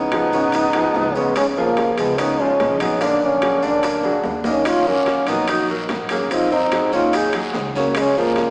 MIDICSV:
0, 0, Header, 1, 6, 480
1, 0, Start_track
1, 0, Tempo, 412939
1, 1582, Time_signature, 4, 2, 24, 8
1, 9883, End_track
2, 0, Start_track
2, 0, Title_t, "Grand piano"
2, 0, Program_c, 0, 0
2, 144, Note_on_c, 0, 53, 65
2, 148, Note_on_c, 0, 68, 57
2, 149, Note_on_c, 0, 65, 56
2, 340, Note_off_c, 0, 53, 0
2, 343, Note_off_c, 0, 65, 0
2, 343, Note_off_c, 0, 68, 0
2, 391, Note_on_c, 0, 49, 73
2, 395, Note_on_c, 0, 73, 69
2, 397, Note_on_c, 0, 61, 69
2, 781, Note_off_c, 0, 49, 0
2, 783, Note_off_c, 0, 73, 0
2, 785, Note_off_c, 0, 61, 0
2, 869, Note_on_c, 0, 53, 73
2, 874, Note_on_c, 0, 65, 64
2, 878, Note_on_c, 0, 68, 65
2, 1260, Note_off_c, 0, 53, 0
2, 1263, Note_off_c, 0, 65, 0
2, 1265, Note_off_c, 0, 68, 0
2, 1351, Note_on_c, 0, 49, 72
2, 1357, Note_on_c, 0, 61, 75
2, 1358, Note_on_c, 0, 73, 72
2, 1741, Note_off_c, 0, 49, 0
2, 1745, Note_off_c, 0, 61, 0
2, 1745, Note_off_c, 0, 73, 0
2, 1828, Note_on_c, 0, 53, 71
2, 1838, Note_on_c, 0, 65, 70
2, 1839, Note_on_c, 0, 68, 63
2, 2219, Note_off_c, 0, 53, 0
2, 2225, Note_off_c, 0, 65, 0
2, 2225, Note_off_c, 0, 68, 0
2, 2315, Note_on_c, 0, 53, 61
2, 2316, Note_on_c, 0, 65, 61
2, 2326, Note_on_c, 0, 68, 65
2, 2506, Note_off_c, 0, 53, 0
2, 2507, Note_off_c, 0, 65, 0
2, 2513, Note_off_c, 0, 68, 0
2, 2551, Note_on_c, 0, 49, 66
2, 2557, Note_on_c, 0, 61, 66
2, 2562, Note_on_c, 0, 73, 68
2, 2744, Note_off_c, 0, 49, 0
2, 2747, Note_off_c, 0, 61, 0
2, 2750, Note_off_c, 0, 73, 0
2, 2804, Note_on_c, 0, 53, 71
2, 2808, Note_on_c, 0, 65, 69
2, 2813, Note_on_c, 0, 68, 62
2, 3188, Note_off_c, 0, 53, 0
2, 3191, Note_off_c, 0, 65, 0
2, 3194, Note_off_c, 0, 68, 0
2, 3266, Note_on_c, 0, 54, 69
2, 3268, Note_on_c, 0, 66, 68
2, 3270, Note_on_c, 0, 68, 65
2, 3461, Note_off_c, 0, 54, 0
2, 3462, Note_off_c, 0, 66, 0
2, 3463, Note_off_c, 0, 68, 0
2, 3502, Note_on_c, 0, 50, 67
2, 3508, Note_on_c, 0, 62, 72
2, 3508, Note_on_c, 0, 74, 66
2, 3895, Note_off_c, 0, 50, 0
2, 3898, Note_off_c, 0, 74, 0
2, 3899, Note_off_c, 0, 62, 0
2, 3989, Note_on_c, 0, 66, 57
2, 3990, Note_on_c, 0, 54, 56
2, 3996, Note_on_c, 0, 68, 59
2, 4182, Note_off_c, 0, 66, 0
2, 4183, Note_off_c, 0, 54, 0
2, 4187, Note_off_c, 0, 68, 0
2, 4212, Note_on_c, 0, 50, 73
2, 4217, Note_on_c, 0, 62, 70
2, 4222, Note_on_c, 0, 74, 74
2, 4609, Note_off_c, 0, 50, 0
2, 4612, Note_off_c, 0, 62, 0
2, 4615, Note_off_c, 0, 74, 0
2, 4699, Note_on_c, 0, 54, 68
2, 4705, Note_on_c, 0, 66, 68
2, 4706, Note_on_c, 0, 68, 64
2, 5093, Note_off_c, 0, 54, 0
2, 5097, Note_off_c, 0, 66, 0
2, 5097, Note_off_c, 0, 68, 0
2, 5182, Note_on_c, 0, 63, 66
2, 5183, Note_on_c, 0, 51, 78
2, 5186, Note_on_c, 0, 75, 70
2, 5575, Note_off_c, 0, 63, 0
2, 5576, Note_off_c, 0, 51, 0
2, 5578, Note_off_c, 0, 75, 0
2, 5665, Note_on_c, 0, 54, 60
2, 5670, Note_on_c, 0, 66, 61
2, 5671, Note_on_c, 0, 70, 61
2, 6057, Note_off_c, 0, 54, 0
2, 6060, Note_off_c, 0, 66, 0
2, 6060, Note_off_c, 0, 70, 0
2, 6149, Note_on_c, 0, 54, 66
2, 6151, Note_on_c, 0, 66, 60
2, 6160, Note_on_c, 0, 70, 58
2, 6342, Note_off_c, 0, 54, 0
2, 6344, Note_off_c, 0, 66, 0
2, 6349, Note_off_c, 0, 70, 0
2, 6391, Note_on_c, 0, 63, 66
2, 6393, Note_on_c, 0, 51, 65
2, 6396, Note_on_c, 0, 75, 67
2, 6584, Note_off_c, 0, 63, 0
2, 6585, Note_off_c, 0, 51, 0
2, 6586, Note_off_c, 0, 75, 0
2, 6622, Note_on_c, 0, 54, 73
2, 6628, Note_on_c, 0, 66, 69
2, 6629, Note_on_c, 0, 70, 62
2, 7015, Note_off_c, 0, 54, 0
2, 7018, Note_off_c, 0, 66, 0
2, 7019, Note_off_c, 0, 70, 0
2, 7106, Note_on_c, 0, 54, 67
2, 7109, Note_on_c, 0, 68, 67
2, 7116, Note_on_c, 0, 66, 64
2, 7300, Note_off_c, 0, 54, 0
2, 7303, Note_off_c, 0, 68, 0
2, 7306, Note_off_c, 0, 66, 0
2, 7362, Note_on_c, 0, 63, 68
2, 7363, Note_on_c, 0, 51, 70
2, 7363, Note_on_c, 0, 75, 73
2, 7747, Note_off_c, 0, 51, 0
2, 7747, Note_off_c, 0, 63, 0
2, 7747, Note_off_c, 0, 75, 0
2, 7829, Note_on_c, 0, 54, 57
2, 7834, Note_on_c, 0, 68, 59
2, 7836, Note_on_c, 0, 66, 61
2, 8022, Note_off_c, 0, 54, 0
2, 8025, Note_off_c, 0, 68, 0
2, 8026, Note_off_c, 0, 66, 0
2, 8059, Note_on_c, 0, 51, 71
2, 8064, Note_on_c, 0, 75, 69
2, 8065, Note_on_c, 0, 63, 72
2, 8453, Note_off_c, 0, 51, 0
2, 8456, Note_off_c, 0, 75, 0
2, 8457, Note_off_c, 0, 63, 0
2, 8538, Note_on_c, 0, 54, 67
2, 8542, Note_on_c, 0, 68, 70
2, 8543, Note_on_c, 0, 66, 62
2, 8933, Note_off_c, 0, 54, 0
2, 8935, Note_off_c, 0, 66, 0
2, 8935, Note_off_c, 0, 68, 0
2, 9020, Note_on_c, 0, 49, 75
2, 9022, Note_on_c, 0, 61, 76
2, 9028, Note_on_c, 0, 73, 73
2, 9414, Note_off_c, 0, 49, 0
2, 9415, Note_off_c, 0, 61, 0
2, 9418, Note_off_c, 0, 73, 0
2, 9504, Note_on_c, 0, 53, 63
2, 9509, Note_on_c, 0, 65, 63
2, 9514, Note_on_c, 0, 68, 59
2, 9883, Note_off_c, 0, 53, 0
2, 9883, Note_off_c, 0, 65, 0
2, 9883, Note_off_c, 0, 68, 0
2, 9883, End_track
3, 0, Start_track
3, 0, Title_t, "Trombone"
3, 0, Program_c, 1, 57
3, 0, Note_on_c, 1, 63, 102
3, 1344, Note_on_c, 1, 59, 86
3, 1362, Note_off_c, 1, 63, 0
3, 1583, Note_off_c, 1, 59, 0
3, 1588, Note_on_c, 1, 61, 92
3, 1695, Note_off_c, 1, 61, 0
3, 1836, Note_on_c, 1, 58, 93
3, 2315, Note_on_c, 1, 59, 88
3, 2332, Note_off_c, 1, 58, 0
3, 2552, Note_on_c, 1, 63, 91
3, 2569, Note_off_c, 1, 59, 0
3, 2804, Note_on_c, 1, 61, 95
3, 2822, Note_off_c, 1, 63, 0
3, 3265, Note_on_c, 1, 63, 87
3, 3282, Note_off_c, 1, 61, 0
3, 3503, Note_off_c, 1, 63, 0
3, 3519, Note_on_c, 1, 62, 95
3, 3756, Note_on_c, 1, 61, 100
3, 3773, Note_off_c, 1, 62, 0
3, 4229, Note_on_c, 1, 62, 99
3, 4246, Note_off_c, 1, 61, 0
3, 4871, Note_off_c, 1, 62, 0
3, 5208, Note_on_c, 1, 61, 86
3, 5426, Note_on_c, 1, 65, 93
3, 5444, Note_off_c, 1, 61, 0
3, 5671, Note_on_c, 1, 61, 96
3, 5689, Note_off_c, 1, 65, 0
3, 6146, Note_on_c, 1, 63, 96
3, 6164, Note_off_c, 1, 61, 0
3, 6383, Note_off_c, 1, 63, 0
3, 6392, Note_on_c, 1, 66, 84
3, 6610, Note_off_c, 1, 66, 0
3, 7091, Note_on_c, 1, 61, 77
3, 7340, Note_on_c, 1, 65, 88
3, 7357, Note_off_c, 1, 61, 0
3, 7580, Note_off_c, 1, 65, 0
3, 7592, Note_on_c, 1, 63, 94
3, 8033, Note_off_c, 1, 63, 0
3, 8073, Note_on_c, 1, 65, 96
3, 8328, Note_on_c, 1, 68, 85
3, 8346, Note_off_c, 1, 65, 0
3, 8554, Note_off_c, 1, 68, 0
3, 9036, Note_on_c, 1, 58, 80
3, 9252, Note_off_c, 1, 58, 0
3, 9284, Note_on_c, 1, 61, 99
3, 9496, Note_off_c, 1, 61, 0
3, 9517, Note_on_c, 1, 58, 92
3, 9883, Note_off_c, 1, 58, 0
3, 9883, End_track
4, 0, Start_track
4, 0, Title_t, "Tenor saxophone"
4, 0, Program_c, 2, 66
4, 0, Note_on_c, 2, 59, 85
4, 1340, Note_on_c, 2, 56, 76
4, 1358, Note_off_c, 2, 59, 0
4, 1581, Note_off_c, 2, 56, 0
4, 1586, Note_on_c, 2, 56, 70
4, 1693, Note_off_c, 2, 56, 0
4, 1827, Note_on_c, 2, 53, 79
4, 2289, Note_on_c, 2, 56, 76
4, 2307, Note_off_c, 2, 53, 0
4, 2532, Note_on_c, 2, 59, 73
4, 2549, Note_off_c, 2, 56, 0
4, 2768, Note_on_c, 2, 56, 78
4, 2785, Note_off_c, 2, 59, 0
4, 3269, Note_on_c, 2, 59, 79
4, 3287, Note_off_c, 2, 56, 0
4, 3492, Note_off_c, 2, 59, 0
4, 3499, Note_on_c, 2, 58, 77
4, 3756, Note_off_c, 2, 58, 0
4, 3756, Note_on_c, 2, 58, 79
4, 4220, Note_off_c, 2, 58, 0
4, 4220, Note_on_c, 2, 58, 76
4, 4867, Note_off_c, 2, 58, 0
4, 5190, Note_on_c, 2, 58, 73
4, 5425, Note_on_c, 2, 61, 81
4, 5442, Note_off_c, 2, 58, 0
4, 5663, Note_on_c, 2, 58, 87
4, 5680, Note_off_c, 2, 61, 0
4, 6142, Note_on_c, 2, 59, 77
4, 6160, Note_off_c, 2, 58, 0
4, 6373, Note_off_c, 2, 59, 0
4, 6380, Note_on_c, 2, 63, 78
4, 6604, Note_off_c, 2, 63, 0
4, 7102, Note_on_c, 2, 58, 68
4, 7335, Note_on_c, 2, 60, 78
4, 7352, Note_off_c, 2, 58, 0
4, 7566, Note_off_c, 2, 60, 0
4, 7573, Note_on_c, 2, 60, 74
4, 8023, Note_off_c, 2, 60, 0
4, 8056, Note_on_c, 2, 61, 75
4, 8303, Note_on_c, 2, 63, 79
4, 8320, Note_off_c, 2, 61, 0
4, 8541, Note_off_c, 2, 63, 0
4, 9017, Note_on_c, 2, 54, 73
4, 9242, Note_off_c, 2, 54, 0
4, 9259, Note_on_c, 2, 56, 88
4, 9483, Note_off_c, 2, 56, 0
4, 9497, Note_on_c, 2, 53, 83
4, 9883, Note_off_c, 2, 53, 0
4, 9883, End_track
5, 0, Start_track
5, 0, Title_t, "Upright bass"
5, 0, Program_c, 3, 32
5, 0, Note_on_c, 3, 37, 79
5, 313, Note_off_c, 3, 37, 0
5, 380, Note_on_c, 3, 32, 90
5, 1055, Note_off_c, 3, 32, 0
5, 1103, Note_on_c, 3, 37, 84
5, 2232, Note_off_c, 3, 37, 0
5, 2299, Note_on_c, 3, 37, 88
5, 2974, Note_off_c, 3, 37, 0
5, 3017, Note_on_c, 3, 34, 81
5, 4148, Note_off_c, 3, 34, 0
5, 4226, Note_on_c, 3, 38, 82
5, 4897, Note_off_c, 3, 38, 0
5, 4942, Note_on_c, 3, 39, 86
5, 6071, Note_off_c, 3, 39, 0
5, 6128, Note_on_c, 3, 34, 84
5, 6807, Note_off_c, 3, 34, 0
5, 6856, Note_on_c, 3, 32, 84
5, 7988, Note_off_c, 3, 32, 0
5, 8048, Note_on_c, 3, 39, 83
5, 8728, Note_off_c, 3, 39, 0
5, 8767, Note_on_c, 3, 37, 85
5, 9883, Note_off_c, 3, 37, 0
5, 9883, End_track
6, 0, Start_track
6, 0, Title_t, "Drums"
6, 136, Note_on_c, 9, 65, 85
6, 136, Note_on_c, 9, 66, 53
6, 141, Note_on_c, 9, 70, 27
6, 152, Note_on_c, 9, 60, 54
6, 252, Note_off_c, 9, 65, 0
6, 252, Note_off_c, 9, 66, 0
6, 258, Note_off_c, 9, 70, 0
6, 269, Note_off_c, 9, 60, 0
6, 382, Note_on_c, 9, 70, 56
6, 394, Note_on_c, 9, 60, 32
6, 499, Note_off_c, 9, 70, 0
6, 511, Note_off_c, 9, 60, 0
6, 608, Note_on_c, 9, 65, 64
6, 617, Note_on_c, 9, 70, 82
6, 638, Note_on_c, 9, 60, 66
6, 724, Note_off_c, 9, 65, 0
6, 733, Note_off_c, 9, 70, 0
6, 754, Note_off_c, 9, 60, 0
6, 851, Note_on_c, 9, 65, 81
6, 859, Note_on_c, 9, 70, 25
6, 877, Note_on_c, 9, 60, 32
6, 968, Note_off_c, 9, 65, 0
6, 975, Note_off_c, 9, 70, 0
6, 994, Note_off_c, 9, 60, 0
6, 1097, Note_on_c, 9, 66, 76
6, 1108, Note_on_c, 9, 70, 26
6, 1116, Note_on_c, 9, 60, 31
6, 1116, Note_on_c, 9, 61, 77
6, 1213, Note_off_c, 9, 66, 0
6, 1225, Note_off_c, 9, 70, 0
6, 1232, Note_off_c, 9, 60, 0
6, 1232, Note_off_c, 9, 61, 0
6, 1339, Note_on_c, 9, 70, 57
6, 1361, Note_on_c, 9, 60, 28
6, 1455, Note_off_c, 9, 70, 0
6, 1477, Note_off_c, 9, 60, 0
6, 1577, Note_on_c, 9, 65, 85
6, 1577, Note_on_c, 9, 70, 73
6, 1591, Note_on_c, 9, 60, 65
6, 1693, Note_off_c, 9, 70, 0
6, 1694, Note_off_c, 9, 65, 0
6, 1708, Note_off_c, 9, 60, 0
6, 1824, Note_on_c, 9, 70, 27
6, 1940, Note_off_c, 9, 70, 0
6, 2056, Note_on_c, 9, 65, 65
6, 2056, Note_on_c, 9, 66, 55
6, 2062, Note_on_c, 9, 70, 25
6, 2077, Note_on_c, 9, 60, 56
6, 2172, Note_off_c, 9, 65, 0
6, 2172, Note_off_c, 9, 66, 0
6, 2178, Note_off_c, 9, 70, 0
6, 2193, Note_off_c, 9, 60, 0
6, 2296, Note_on_c, 9, 65, 65
6, 2302, Note_on_c, 9, 70, 58
6, 2312, Note_on_c, 9, 60, 29
6, 2413, Note_off_c, 9, 65, 0
6, 2418, Note_off_c, 9, 70, 0
6, 2428, Note_off_c, 9, 60, 0
6, 2538, Note_on_c, 9, 65, 81
6, 2539, Note_on_c, 9, 70, 85
6, 2546, Note_on_c, 9, 60, 65
6, 2654, Note_off_c, 9, 65, 0
6, 2655, Note_off_c, 9, 70, 0
6, 2662, Note_off_c, 9, 60, 0
6, 2781, Note_on_c, 9, 60, 33
6, 2781, Note_on_c, 9, 70, 26
6, 2897, Note_off_c, 9, 60, 0
6, 2897, Note_off_c, 9, 70, 0
6, 3021, Note_on_c, 9, 65, 61
6, 3021, Note_on_c, 9, 66, 74
6, 3024, Note_on_c, 9, 60, 32
6, 3024, Note_on_c, 9, 61, 75
6, 3025, Note_on_c, 9, 70, 26
6, 3137, Note_off_c, 9, 65, 0
6, 3137, Note_off_c, 9, 66, 0
6, 3141, Note_off_c, 9, 60, 0
6, 3141, Note_off_c, 9, 61, 0
6, 3141, Note_off_c, 9, 70, 0
6, 3257, Note_on_c, 9, 65, 80
6, 3259, Note_on_c, 9, 70, 60
6, 3265, Note_on_c, 9, 60, 28
6, 3374, Note_off_c, 9, 65, 0
6, 3375, Note_off_c, 9, 70, 0
6, 3381, Note_off_c, 9, 60, 0
6, 3497, Note_on_c, 9, 60, 60
6, 3499, Note_on_c, 9, 70, 82
6, 3504, Note_on_c, 9, 65, 66
6, 3613, Note_off_c, 9, 60, 0
6, 3615, Note_off_c, 9, 70, 0
6, 3621, Note_off_c, 9, 65, 0
6, 3742, Note_on_c, 9, 70, 26
6, 3858, Note_off_c, 9, 70, 0
6, 3974, Note_on_c, 9, 65, 89
6, 3974, Note_on_c, 9, 66, 55
6, 3977, Note_on_c, 9, 70, 25
6, 3984, Note_on_c, 9, 60, 59
6, 4091, Note_off_c, 9, 65, 0
6, 4091, Note_off_c, 9, 66, 0
6, 4093, Note_off_c, 9, 70, 0
6, 4100, Note_off_c, 9, 60, 0
6, 4213, Note_on_c, 9, 70, 57
6, 4227, Note_on_c, 9, 60, 33
6, 4329, Note_off_c, 9, 70, 0
6, 4344, Note_off_c, 9, 60, 0
6, 4451, Note_on_c, 9, 65, 64
6, 4452, Note_on_c, 9, 70, 78
6, 4468, Note_on_c, 9, 60, 67
6, 4567, Note_off_c, 9, 65, 0
6, 4568, Note_off_c, 9, 70, 0
6, 4584, Note_off_c, 9, 60, 0
6, 4685, Note_on_c, 9, 65, 67
6, 4695, Note_on_c, 9, 70, 25
6, 4708, Note_on_c, 9, 60, 33
6, 4802, Note_off_c, 9, 65, 0
6, 4811, Note_off_c, 9, 70, 0
6, 4824, Note_off_c, 9, 60, 0
6, 4923, Note_on_c, 9, 66, 77
6, 4934, Note_on_c, 9, 70, 28
6, 4941, Note_on_c, 9, 60, 31
6, 4941, Note_on_c, 9, 61, 71
6, 5039, Note_off_c, 9, 66, 0
6, 5050, Note_off_c, 9, 70, 0
6, 5058, Note_off_c, 9, 60, 0
6, 5058, Note_off_c, 9, 61, 0
6, 5162, Note_on_c, 9, 66, 72
6, 5175, Note_on_c, 9, 70, 61
6, 5183, Note_on_c, 9, 60, 28
6, 5278, Note_off_c, 9, 66, 0
6, 5292, Note_off_c, 9, 70, 0
6, 5300, Note_off_c, 9, 60, 0
6, 5407, Note_on_c, 9, 65, 88
6, 5413, Note_on_c, 9, 74, 70
6, 5417, Note_on_c, 9, 60, 63
6, 5417, Note_on_c, 9, 70, 84
6, 5524, Note_off_c, 9, 65, 0
6, 5529, Note_off_c, 9, 74, 0
6, 5533, Note_off_c, 9, 70, 0
6, 5534, Note_off_c, 9, 60, 0
6, 5657, Note_on_c, 9, 70, 28
6, 5773, Note_off_c, 9, 70, 0
6, 5884, Note_on_c, 9, 65, 62
6, 5884, Note_on_c, 9, 66, 52
6, 5896, Note_on_c, 9, 70, 26
6, 5899, Note_on_c, 9, 60, 54
6, 5901, Note_on_c, 9, 73, 62
6, 6000, Note_off_c, 9, 65, 0
6, 6000, Note_off_c, 9, 66, 0
6, 6012, Note_off_c, 9, 70, 0
6, 6015, Note_off_c, 9, 60, 0
6, 6018, Note_off_c, 9, 73, 0
6, 6121, Note_on_c, 9, 65, 69
6, 6129, Note_on_c, 9, 70, 60
6, 6142, Note_on_c, 9, 73, 57
6, 6147, Note_on_c, 9, 60, 32
6, 6237, Note_off_c, 9, 65, 0
6, 6245, Note_off_c, 9, 70, 0
6, 6258, Note_off_c, 9, 73, 0
6, 6263, Note_off_c, 9, 60, 0
6, 6365, Note_on_c, 9, 65, 85
6, 6368, Note_on_c, 9, 70, 78
6, 6376, Note_on_c, 9, 74, 59
6, 6381, Note_on_c, 9, 60, 67
6, 6481, Note_off_c, 9, 65, 0
6, 6484, Note_off_c, 9, 70, 0
6, 6492, Note_off_c, 9, 74, 0
6, 6497, Note_off_c, 9, 60, 0
6, 6615, Note_on_c, 9, 70, 29
6, 6623, Note_on_c, 9, 60, 34
6, 6731, Note_off_c, 9, 70, 0
6, 6739, Note_off_c, 9, 60, 0
6, 6846, Note_on_c, 9, 65, 64
6, 6846, Note_on_c, 9, 66, 78
6, 6854, Note_on_c, 9, 70, 24
6, 6854, Note_on_c, 9, 73, 70
6, 6855, Note_on_c, 9, 60, 31
6, 6855, Note_on_c, 9, 61, 79
6, 6962, Note_off_c, 9, 65, 0
6, 6962, Note_off_c, 9, 66, 0
6, 6970, Note_off_c, 9, 70, 0
6, 6970, Note_off_c, 9, 73, 0
6, 6972, Note_off_c, 9, 60, 0
6, 6972, Note_off_c, 9, 61, 0
6, 7079, Note_on_c, 9, 65, 84
6, 7092, Note_on_c, 9, 73, 64
6, 7094, Note_on_c, 9, 70, 59
6, 7098, Note_on_c, 9, 60, 31
6, 7195, Note_off_c, 9, 65, 0
6, 7209, Note_off_c, 9, 73, 0
6, 7210, Note_off_c, 9, 70, 0
6, 7214, Note_off_c, 9, 60, 0
6, 7334, Note_on_c, 9, 65, 66
6, 7334, Note_on_c, 9, 70, 80
6, 7334, Note_on_c, 9, 74, 69
6, 7335, Note_on_c, 9, 60, 63
6, 7450, Note_off_c, 9, 65, 0
6, 7451, Note_off_c, 9, 60, 0
6, 7451, Note_off_c, 9, 70, 0
6, 7451, Note_off_c, 9, 74, 0
6, 7572, Note_on_c, 9, 70, 27
6, 7688, Note_off_c, 9, 70, 0
6, 7805, Note_on_c, 9, 73, 64
6, 7806, Note_on_c, 9, 70, 25
6, 7808, Note_on_c, 9, 65, 91
6, 7808, Note_on_c, 9, 66, 58
6, 7821, Note_on_c, 9, 60, 54
6, 7921, Note_off_c, 9, 73, 0
6, 7922, Note_off_c, 9, 70, 0
6, 7924, Note_off_c, 9, 65, 0
6, 7924, Note_off_c, 9, 66, 0
6, 7937, Note_off_c, 9, 60, 0
6, 8043, Note_on_c, 9, 73, 62
6, 8051, Note_on_c, 9, 70, 62
6, 8060, Note_on_c, 9, 60, 31
6, 8159, Note_off_c, 9, 73, 0
6, 8168, Note_off_c, 9, 70, 0
6, 8176, Note_off_c, 9, 60, 0
6, 8288, Note_on_c, 9, 70, 77
6, 8290, Note_on_c, 9, 65, 68
6, 8290, Note_on_c, 9, 74, 67
6, 8302, Note_on_c, 9, 60, 65
6, 8405, Note_off_c, 9, 70, 0
6, 8406, Note_off_c, 9, 65, 0
6, 8406, Note_off_c, 9, 74, 0
6, 8418, Note_off_c, 9, 60, 0
6, 8519, Note_on_c, 9, 65, 83
6, 8529, Note_on_c, 9, 70, 26
6, 8541, Note_on_c, 9, 60, 33
6, 8635, Note_off_c, 9, 65, 0
6, 8646, Note_off_c, 9, 70, 0
6, 8658, Note_off_c, 9, 60, 0
6, 8758, Note_on_c, 9, 66, 74
6, 8771, Note_on_c, 9, 73, 66
6, 8772, Note_on_c, 9, 70, 25
6, 8779, Note_on_c, 9, 60, 35
6, 8779, Note_on_c, 9, 61, 83
6, 8875, Note_off_c, 9, 66, 0
6, 8888, Note_off_c, 9, 70, 0
6, 8888, Note_off_c, 9, 73, 0
6, 8895, Note_off_c, 9, 60, 0
6, 8895, Note_off_c, 9, 61, 0
6, 9015, Note_on_c, 9, 73, 61
6, 9018, Note_on_c, 9, 70, 60
6, 9029, Note_on_c, 9, 60, 30
6, 9131, Note_off_c, 9, 73, 0
6, 9134, Note_off_c, 9, 70, 0
6, 9145, Note_off_c, 9, 60, 0
6, 9237, Note_on_c, 9, 65, 96
6, 9244, Note_on_c, 9, 74, 63
6, 9256, Note_on_c, 9, 70, 83
6, 9270, Note_on_c, 9, 60, 69
6, 9353, Note_off_c, 9, 65, 0
6, 9360, Note_off_c, 9, 74, 0
6, 9372, Note_off_c, 9, 70, 0
6, 9387, Note_off_c, 9, 60, 0
6, 9499, Note_on_c, 9, 70, 27
6, 9615, Note_off_c, 9, 70, 0
6, 9715, Note_on_c, 9, 65, 68
6, 9715, Note_on_c, 9, 66, 56
6, 9734, Note_on_c, 9, 73, 65
6, 9741, Note_on_c, 9, 70, 27
6, 9742, Note_on_c, 9, 60, 55
6, 9832, Note_off_c, 9, 65, 0
6, 9832, Note_off_c, 9, 66, 0
6, 9851, Note_off_c, 9, 73, 0
6, 9857, Note_off_c, 9, 70, 0
6, 9858, Note_off_c, 9, 60, 0
6, 9883, End_track
0, 0, End_of_file